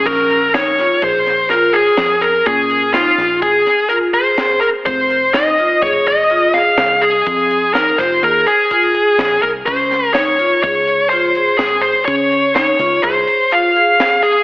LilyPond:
<<
  \new Staff \with { instrumentName = "Lead electric guitar" } { \time 5/4 \key bes \minor \tempo 4 = 125 bes'4 des''4 c''4 bes'8 aes'4 bes'8 | aes'4 f'4 aes'4 bes'8 c''4 bes'8 | c''4 ees''4 des''8 ees''4 f''4 aes'8~ | aes'4 bes'8 c''8 bes'8 aes'2 bes'8 |
c''4 des''4 des''4 c''4 aes'8 c''8 | des''4 des''4 c''4 f''4. aes'8 | }
  \new Staff \with { instrumentName = "Vibraphone" } { \time 5/4 \key bes \minor des'4 ees'8 f'8 aes'4 f'8 aes'8 aes'4 | des'4 ees'8 f'8 aes'4 f'8 aes'8 aes'4 | c'4 ees'8 f'8 aes'4 f'8 aes'8 aes'4 | c'4 ees'8 f'8 aes'4 f'8 aes'8 aes'4 |
des'4 ees'8 f'8 aes'4 f'8 aes'8 aes'4 | des'4 ees'8 f'8 aes'4 f'8 aes'8 aes'4 | }
  \new Staff \with { instrumentName = "Fingered electric bass" } { \clef bass \time 5/4 \key bes \minor bes,,2 bes,,2 f,4 | bes,4. bes,,8 aes,,8 r2 r8 | f,,2 f,,2 c,4 | f,4. f,,8 ees,8 r4. bes,,8 c,8 |
des,2 des,2 aes,,4 | des4. des,8 c,8 r2 r8 | }
  \new DrumStaff \with { instrumentName = "Drums" } \drummode { \time 5/4 <cymc bd>8 hh8 <hh sn>8 <hh sn>8 <hh bd>8 <hh sn>8 <hh sn>8 hh8 <hh sn>8 hh8 | <hh bd>8 hh8 <hh sn>8 <hh sn>8 <hh bd>8 <hh sn>8 hh8 hh8 <hh sn>8 hh8 | <hh bd>8 hh8 <hh sn>8 hh8 <hh bd>8 hh8 hh8 <hh sn>8 <hh sn>8 hh8 | <hh bd>8 hh8 <hh sn>8 <hh sn>8 hh8 hh8 <hh bd>8 hh8 <hh sn>8 <hh bd>8 |
<hh bd>8 <hh sn>8 <hh sn>8 hh8 <hh bd>8 hh8 hh8 hh8 <hh sn>8 hh8 | <hh bd>8 hh8 <hh sn>8 hh8 <hh bd>8 hh8 hh8 hh8 <hh sn>8 hh8 | }
>>